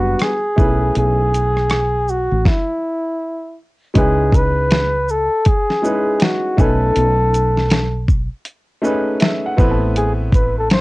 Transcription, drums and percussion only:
0.20 cross-stick loud
0.20 closed hi-hat medium
0.58 kick loud
0.58 shaker soft
0.95 closed hi-hat medium
1.34 closed hi-hat medium
1.34 shaker soft
1.57 cross-stick soft
1.70 cross-stick loud
1.70 closed hi-hat medium
2.09 shaker soft
2.46 kick loud
2.46 snare medium
3.95 kick medium
3.95 closed hi-hat medium
4.32 kick medium
4.32 closed hi-hat medium
4.32 shaker medium
4.70 snare loud
4.70 closed hi-hat medium
5.09 shaker medium
5.45 kick medium
5.45 closed hi-hat medium
5.70 snare soft
5.85 shaker medium
6.20 snare loud
6.20 closed hi-hat medium
6.58 kick loud
6.58 shaker medium
6.96 closed hi-hat medium
7.34 closed hi-hat medium
7.34 shaker medium
7.57 snare soft
7.70 snare loud
7.70 closed hi-hat medium
8.08 kick medium
8.08 shaker medium
8.45 closed hi-hat medium
8.84 shaker medium
9.20 snare loud
9.20 closed hi-hat medium
9.58 kick loud
9.58 shaker medium
9.96 closed hi-hat medium
10.32 kick medium
10.32 closed hi-hat medium
10.32 shaker soft
10.70 snare loud
10.70 closed hi-hat medium

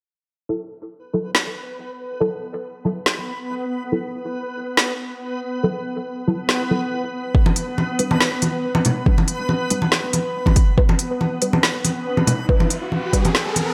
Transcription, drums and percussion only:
1.35 snare loud
3.06 snare loud
4.77 snare loud
6.49 snare loud
7.35 kick loud
7.46 high conga medium
7.56 closed hi-hat medium
7.78 high conga medium
7.99 closed hi-hat medium
8.11 high conga medium
8.21 snare loud
8.42 closed hi-hat medium
8.42 high conga medium
8.75 high conga medium
8.85 closed hi-hat medium
8.85 low conga medium
9.06 kick loud
9.18 high conga medium
9.28 closed hi-hat medium
9.49 high conga medium
9.70 closed hi-hat medium
9.82 high conga medium
9.92 snare loud
10.13 closed hi-hat medium
10.13 high conga medium
10.46 kick medium
10.46 high conga medium
10.56 kick loud
10.56 closed hi-hat medium
10.78 kick loud
10.89 high conga medium
10.99 closed hi-hat medium
11.21 high conga medium
11.42 closed hi-hat medium
11.53 high conga medium
11.63 snare loud
11.85 closed hi-hat medium
11.85 high conga medium
12.17 high conga medium
12.27 closed hi-hat medium
12.27 low conga medium
12.49 kick loud
12.60 high conga medium
12.70 closed hi-hat medium
12.92 high conga medium
13.13 kick medium
13.13 closed hi-hat medium
13.25 closed hi-hat soft
13.25 high conga medium
13.35 snare loud
13.56 closed hi-hat medium
13.56 high conga medium

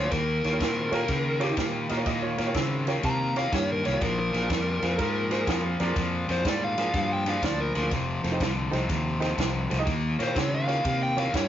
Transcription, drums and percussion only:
0.12 kick medium
0.12 snare soft
0.12 ride medium
0.44 snare soft
0.44 ride medium
0.60 kick medium
0.60 snare loud
0.60 ride medium
0.93 snare soft
0.93 ride medium
1.08 kick medium
1.08 snare soft
1.08 ride medium
1.41 snare soft
1.41 ride medium
1.57 kick medium
1.57 snare loud
1.57 ride medium
1.89 snare soft
1.89 ride medium
2.06 kick medium
2.06 snare soft
2.06 ride medium
2.38 snare soft
2.38 ride medium
2.54 kick medium
2.54 snare loud
2.54 ride medium
2.87 snare soft
2.87 ride medium
3.03 kick medium
3.03 snare soft
3.03 ride medium
3.36 snare soft
3.36 ride medium
3.52 kick medium
3.52 snare medium
3.52 ride medium
3.85 snare soft
3.85 ride medium
4.01 kick medium
4.01 snare soft
4.01 ride medium
4.34 snare soft
4.34 ride medium
4.50 kick medium
4.50 snare medium
4.50 ride medium
4.83 snare soft
4.83 ride medium
4.99 kick medium
4.99 snare soft
4.99 ride medium
5.31 snare soft
5.31 ride medium
5.47 kick medium
5.47 snare loud
5.47 ride medium
5.80 snare soft
5.80 ride medium
5.96 kick medium
5.96 snare soft
5.96 ride medium
6.29 snare soft
6.29 ride medium
6.45 kick medium
6.45 snare medium
6.45 ride medium
6.78 snare soft
6.78 ride medium
6.94 kick medium
6.94 snare soft
6.94 ride medium
7.26 snare soft
7.26 ride medium
7.43 kick medium
7.43 snare loud
7.43 ride medium
7.75 snare soft
7.75 ride medium
7.91 kick medium
7.91 snare soft
7.91 ride medium
8.24 snare soft
8.24 ride medium
8.40 kick medium
8.40 snare medium
8.40 ride medium
8.73 snare soft
8.73 ride medium
8.89 kick medium
8.89 snare soft
8.89 ride medium
9.22 snare soft
9.22 ride soft
9.38 kick medium
9.38 snare loud
9.38 ride medium
9.71 snare soft
9.71 ride medium
9.87 kick medium
9.87 snare soft
9.87 ride medium
10.20 snare soft
10.20 ride medium
10.36 kick medium
10.36 snare loud
10.36 ride medium
10.69 snare soft
10.69 ride medium
10.85 kick medium
10.85 snare soft
10.85 ride medium
11.18 snare soft
11.18 ride medium
11.34 kick medium
11.34 snare loud
11.34 ride medium

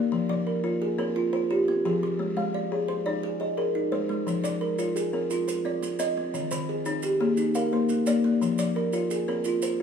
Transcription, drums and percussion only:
4.28 maracas medium
4.45 maracas medium
4.79 maracas medium
4.96 maracas medium
5.30 maracas medium
5.48 maracas medium
5.83 maracas medium
5.99 maracas medium
6.34 maracas medium
6.51 maracas medium
6.85 maracas medium
7.02 maracas medium
7.37 maracas medium
7.55 maracas medium
7.89 maracas medium
8.06 maracas medium
8.42 maracas medium
8.58 maracas medium
8.93 maracas medium
9.11 maracas medium
9.44 maracas medium
9.62 maracas medium

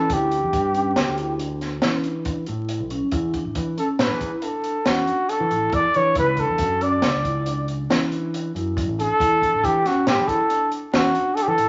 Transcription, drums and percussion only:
0.10 kick loud
0.10 closed hi-hat medium
0.31 closed hi-hat medium
0.53 kick medium
0.53 closed hi-hat medium
0.74 closed hi-hat medium
0.96 snare medium
0.96 closed hi-hat medium
1.18 closed hi-hat medium
1.39 closed hi-hat medium
1.61 snare soft
1.61 closed hi-hat soft
1.82 snare loud
1.82 closed hi-hat medium
2.04 closed hi-hat soft
2.25 kick medium
2.25 closed hi-hat medium
2.46 closed hi-hat soft
2.69 closed hi-hat medium
2.90 closed hi-hat medium
3.11 kick loud
3.11 closed hi-hat medium
3.34 kick medium
3.34 closed hi-hat medium
3.55 kick medium
3.55 closed hi-hat medium
3.78 closed hi-hat medium
3.99 snare loud
3.99 closed hi-hat medium
4.21 kick medium
4.21 closed hi-hat medium
4.42 closed hi-hat medium
4.64 closed hi-hat medium
4.86 snare medium
4.86 closed hi-hat medium
5.07 closed hi-hat medium
5.29 closed hi-hat medium
5.51 closed hi-hat soft
5.72 kick medium
5.72 closed hi-hat medium
5.94 closed hi-hat medium
6.15 kick loud
6.15 closed hi-hat medium
6.37 kick medium
6.37 closed hi-hat medium
6.58 kick medium
6.58 closed hi-hat medium
6.81 closed hi-hat medium
7.02 snare medium
7.02 closed hi-hat medium
7.24 kick medium
7.24 closed hi-hat medium
7.46 closed hi-hat medium
7.68 closed hi-hat medium
7.90 snare loud
7.90 closed hi-hat medium
8.12 closed hi-hat medium
8.34 closed hi-hat medium
8.56 closed hi-hat medium
8.77 kick medium
8.77 closed hi-hat medium
9.00 closed hi-hat medium
9.20 kick loud
9.20 closed hi-hat medium
9.42 kick medium
9.42 closed hi-hat medium
9.64 kick medium
9.64 closed hi-hat medium
9.86 snare soft
9.86 closed hi-hat medium
10.07 snare medium
10.07 closed hi-hat medium
10.28 kick medium
10.28 closed hi-hat medium
10.50 closed hi-hat medium
10.72 closed hi-hat medium
10.94 snare loud
10.94 closed hi-hat medium
11.15 closed hi-hat medium
11.37 closed hi-hat medium
11.58 closed hi-hat medium

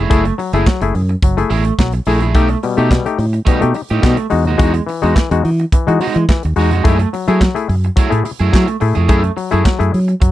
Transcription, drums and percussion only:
0.10 kick loud
0.10 closed hi-hat medium
0.25 closed hi-hat soft
0.39 open hi-hat medium
0.53 closed hi-hat soft
0.66 kick loud
0.66 snare loud
0.66 clap medium
0.66 closed hi-hat medium
0.81 closed hi-hat medium
0.95 open hi-hat soft
1.09 closed hi-hat soft
1.23 kick loud
1.23 closed hi-hat medium
1.38 closed hi-hat soft
1.50 open hi-hat medium
1.65 closed hi-hat soft
1.79 kick loud
1.79 snare loud
1.79 clap medium
1.79 closed hi-hat soft
1.92 closed hi-hat medium
2.06 open hi-hat medium
2.20 closed hi-hat soft
2.35 kick loud
2.35 closed hi-hat medium
2.49 closed hi-hat soft
2.63 open hi-hat medium
2.78 closed hi-hat soft
2.91 kick loud
2.91 snare loud
2.91 clap medium
2.91 closed hi-hat medium
3.06 closed hi-hat medium
3.19 open hi-hat medium
3.34 closed hi-hat soft
3.47 kick loud
3.47 closed hi-hat medium
3.62 closed hi-hat soft
3.74 open hi-hat medium
3.89 closed hi-hat soft
4.03 kick medium
4.03 snare medium
4.03 clap medium
4.03 closed hi-hat medium
4.17 closed hi-hat medium
4.30 open hi-hat medium
4.45 closed hi-hat soft
4.59 kick loud
4.59 closed hi-hat medium
4.74 closed hi-hat soft
4.89 open hi-hat medium
5.03 closed hi-hat soft
5.16 kick medium
5.16 snare loud
5.16 clap medium
5.16 closed hi-hat medium
5.31 closed hi-hat medium
5.45 open hi-hat medium
5.59 closed hi-hat soft
5.72 kick loud
5.72 closed hi-hat medium
5.88 closed hi-hat soft
6.01 open hi-hat medium
6.14 closed hi-hat soft
6.29 kick loud
6.29 snare medium
6.29 clap medium
6.29 closed hi-hat soft
6.43 closed hi-hat soft
6.56 open hi-hat medium
6.71 closed hi-hat soft
6.85 kick loud
6.85 closed hi-hat medium
6.99 closed hi-hat soft
7.14 open hi-hat medium
7.28 closed hi-hat soft
7.41 kick medium
7.41 snare loud
7.41 clap medium
7.41 closed hi-hat medium
7.56 closed hi-hat medium
7.70 open hi-hat medium
7.84 closed hi-hat soft
7.97 kick loud
7.97 closed hi-hat medium
8.12 closed hi-hat soft
8.25 open hi-hat medium
8.39 closed hi-hat soft
8.53 kick loud
8.53 snare loud
8.53 clap medium
8.53 closed hi-hat medium
8.68 closed hi-hat medium
8.81 open hi-hat medium
8.95 closed hi-hat soft
9.09 kick loud
9.09 closed hi-hat medium
9.24 closed hi-hat soft
9.38 open hi-hat medium
9.52 closed hi-hat soft
9.65 kick loud
9.65 snare loud
9.65 clap medium
9.65 closed hi-hat medium
9.81 closed hi-hat medium
9.94 open hi-hat medium
10.09 closed hi-hat soft
10.22 kick loud
10.22 closed hi-hat medium

